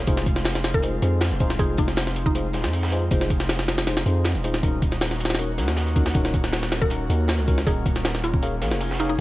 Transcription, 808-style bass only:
0.07 F1
1.02 F2
1.31 D#1
1.59 F1
1.78 F1
2.54 D#1
2.64 F2
3.11 F1
4.06 F2
4.35 D#1
4.63 D#1
4.82 D#1
5.58 C#2
5.68 D#2
6.15 D#1
7.10 D#2
7.38 C#2
7.67 D#1
7.86 D#1
8.62 A#1
8.72 F1

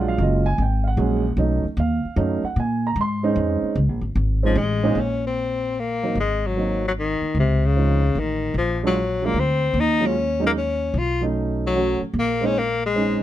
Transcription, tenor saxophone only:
4.46 F3
4.58 G#3
5.00 C#4
5.27 C4
5.79 A#3
6.20 G#3
6.47 F#3
6.88 F#3
6.99 D#3
7.39 C3
7.66 C#3
8.19 D#3
8.58 F3
8.86 F#3
9.26 A#3
9.39 C4
9.80 D#4
10.06 C#4
10.46 A#3
10.57 C#4
10.98 F4
11.67 F#3
12.19 A#3
12.45 C#4
12.58 A#3
12.86 G#3

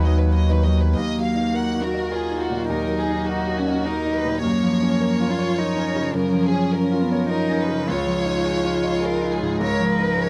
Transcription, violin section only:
0.05 D#5
0.18 B4
0.34 D#5
0.50 B4
0.64 D#5
0.79 B4
0.96 D#5
1.23 F5
1.53 F#5
1.82 A#4
2.12 G#4
2.41 F#4
2.69 A#4
2.98 G#4
3.26 F#4
3.85 A#4
4.14 B4
4.43 C#5
6.16 A#4
6.45 G#4
6.72 A#4
7.30 A#4
7.59 B4
7.90 C#5
9.04 A#4
9.32 G#4
9.63 C#5
9.91 B4
10.21 C#5

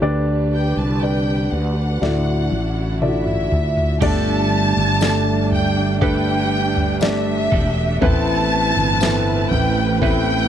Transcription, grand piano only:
0.02 D3 D4 G4 B4 D5
1.02 D4 G4 B4 D5
2.02 A2 E4 F#4 A4 D5
3.01 E4 F4 A4 D5
3.08 F#4
4.02 G2 D3 A3 D4 G4 A4 D5
5.01 A3 D4 G4 A4 D5
6.02 A3 D4 G4 A4 B4
7.01 A3 D4 G4 A4 D5
8.01 A2 E3 B3 C4 E4 A4 B4
9.01 B3 C4 E4 A4 B4
10.02 B3 C4 E4 A4 B4

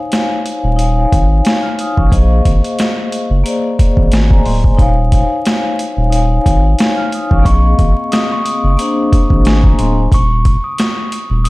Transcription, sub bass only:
0.64 D#1
1.12 G#1
1.97 A1
2.12 A#1
2.45 G#1
3.30 F#1
3.97 G#1
4.12 G#1
4.45 D1
4.79 D#1
5.97 D#1
6.46 G#1
7.31 A1
7.45 A#1
7.79 G#1
8.64 F#1
9.30 G#1
9.45 G#1
9.78 D1
10.12 D#1
11.30 D#1

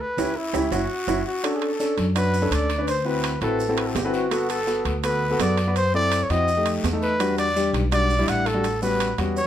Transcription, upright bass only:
0.17 C#2
0.53 C#2
0.71 F#1
1.07 F#1
1.97 F#2
2.51 D2
3.41 A1
3.95 G1
4.85 D2
5.39 F#2
6.30 F2
6.84 E2
7.73 B1
8.27 A1
9.18 E2

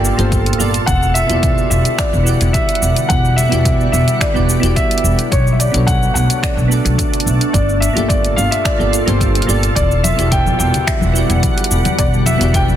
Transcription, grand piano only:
Already playing: G5
0.86 F#5
1.14 E5
1.70 E5
1.98 D5
2.53 E5
3.09 F#5
3.36 E5
3.92 E5
4.21 D5
4.76 E5
5.32 C#5
5.52 E5
5.59 D5
5.87 F#5
6.14 F#5
6.42 D5
7.53 D5
7.80 E5
8.08 D5
8.36 F5
8.51 E5
8.65 D5
9.75 D5
10.04 E5
10.31 G5
10.59 G5
10.87 E5
11.98 D5
12.26 E5
12.54 G5

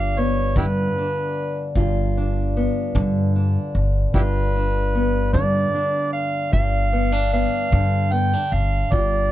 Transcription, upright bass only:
Already playing: G1
0.56 G2
1.76 G1
2.95 G2
3.75 G1
4.14 G1
5.34 G2
6.53 G1
7.73 G2
8.52 G1
8.93 G1

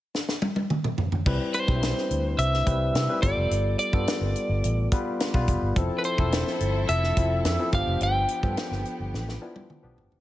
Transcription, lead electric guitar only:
1.54 C5
2.39 E5
3.22 D5
3.79 D5
5.98 B4
6.05 C5
6.89 E5
7.75 F5
8.03 G5

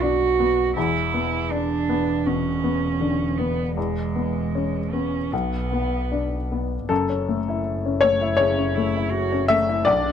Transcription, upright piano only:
Already playing: F#2 B3 D4
0.02 D4
0.40 B3
0.77 E2
1.14 B3
1.51 D4
1.89 B3
2.27 B2
2.64 B3
3.01 D3
3.39 B3
3.77 E2
4.16 B3
4.55 C#4
4.93 B3
5.33 B1
5.72 B3
6.12 D4
6.52 B3
6.89 F#2 A4
7.09 C#4
7.29 A3
7.49 E4
7.86 C#4
8.01 A3 C#5
8.21 E4
8.37 C#3 C#5
8.58 C#4
8.77 A3
8.96 E4
9.32 C#4
9.48 A3 E5
9.69 E4
9.85 B1 D5
10.04 D4

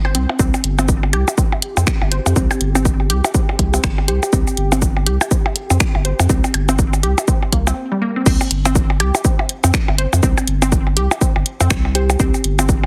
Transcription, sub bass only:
Already playing: G1
0.15 C2
0.39 C2
0.64 G1
1.13 C2
1.77 F2
2.01 G1
2.26 F2
2.36 C2
2.61 G1
3.10 C2
3.59 C2
3.84 G1
4.08 C2
4.33 C2
4.57 G1
5.06 C2
5.70 F2
5.95 G1
6.20 F2
6.29 C2
6.54 G1
7.03 C2
7.52 C2
8.26 C2
8.51 G1
9.00 C2
9.64 F2
9.88 G1
10.13 F2
10.23 C2
10.47 G1
10.97 C2
11.36 G1
11.61 F2
11.70 C2
12.20 C2
12.44 G1

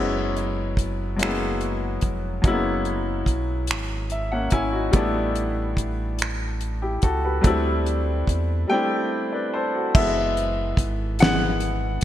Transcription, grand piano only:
Already playing: F#3 G#3 B3 C#4 E4
1.16 F#3 G#3 A#3
1.21 C#4 E4
1.26 B3
2.42 F#3 G#3 A#3
2.46 C#4 E4
2.51 B3
4.12 E5
4.32 A#3 C#4 F#5
4.53 C#4 E4 G#5
4.72 D#4 F#4
4.91 G3 A3 B3
4.96 D4 E4
6.82 E4 G4
7.03 F#4 A4
7.25 G4 B4
7.41 F#3 A3 C4 D4
7.47 G3 E4
8.67 G3 A3 C4 G5
8.72 D4 E4
9.32 B4 D5
9.54 A4 C5
9.75 F#4 A4
9.95 E3 G#3 B3 E5
11.20 E3 G#3 B3 F#5

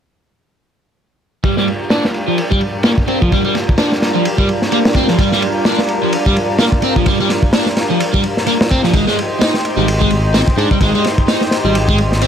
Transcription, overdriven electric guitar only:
1.44 G3
1.57 G3
1.91 D4
2.28 F3
2.51 G3
2.85 A#3
3.08 C4
3.21 F3
3.32 G3
3.45 G3
3.78 D4
4.15 F3
4.39 G3
4.73 A#3
4.96 C4
5.09 F3
5.19 G3
5.32 G3
5.66 D4
6.03 F3
6.26 G3
6.60 A#3
6.83 C4
6.97 F3
7.07 G3
7.20 G3
7.54 D4
7.91 F3
8.14 G3
8.47 A#3
8.71 C4
8.84 F3
8.94 G#3
9.07 G#3
9.41 D#4
9.77 G3
10.01 G#3
10.35 C4
10.58 D4
10.71 G3
10.82 G#3
10.95 G#3
11.28 D#4
11.65 G3
11.89 G#3
12.22 C4

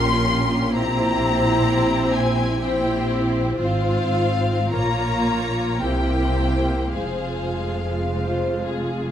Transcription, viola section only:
Already playing: C#4 F4
0.73 C4 E4
2.61 C4 E4
3.61 C4 F4
4.72 A#3 F4
5.81 A#3 E4
6.93 G#3 F4

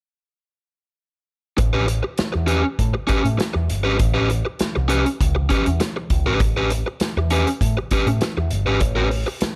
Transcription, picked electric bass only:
1.59 A1
2.19 muted picked electric bass stroke
2.35 E2
2.79 A2
3.10 muted picked electric bass stroke
3.25 A2
3.55 E2
3.69 G1
3.86 G#1
4.00 A1
4.61 muted picked electric bass stroke
4.77 C2
5.21 C#2
5.67 E2
6.11 C#2
6.27 G#1
6.41 A1
7.01 muted picked electric bass stroke
7.17 E2
7.61 A2
7.91 muted picked electric bass stroke
8.07 A2
8.37 E2
8.51 G1
8.67 G#1
8.82 A1
9.42 muted picked electric bass stroke

